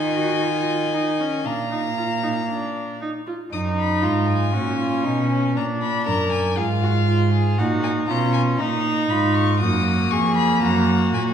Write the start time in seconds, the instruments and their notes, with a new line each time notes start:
Already playing: cello D#3, viola F4, violin D#5 G#5
0.16 viola F#4
0.42 viola F4
0.94 viola D#4
1.20 viola C#4
1.45 cello A#2, viola D4, violin F5 A#5
1.71 viola D#4
1.98 viola F4
2.23 viola D#4
2.48 viola D4
3.02 viola D#4
3.27 viola F4
3.52 cello F#2, violin D#4 D#6, viola D#4
3.80 violin B5
4.02 cello G#2, violin F4 A#5
4.29 violin G#5
4.53 cello A#2, viola C#4, violin F#4
4.79 violin F4
5.04 cello B2, violin D#4
5.30 violin C#4
5.56 cello A#2, violin D4 A#5, viola D4
5.82 violin B5
6.06 cello F#2, violin A#4 A#5
6.32 violin G#5
6.56 cello G#2, viola F4, violin G#4 F5
6.83 violin F#4
7.07 violin F4
7.33 violin G#4
7.58 cello A#2, viola D#4, violin F#4 F#5
7.84 violin G#5
8.08 cello B2, viola C#4, violin F4 A#5
8.33 violin G#5
8.58 cello A#2, violin D#4 A#5, viola D#4
9.10 cello G#2, violin F4 B5
9.35 violin C#6
9.60 cello F#2, viola A#3, violin F#4 D#6
10.11 cello F2, violin G#4 C#6
10.37 violin B5
10.62 cello F#2, violin F#4 A#5
11.13 cello A#2, violin G#5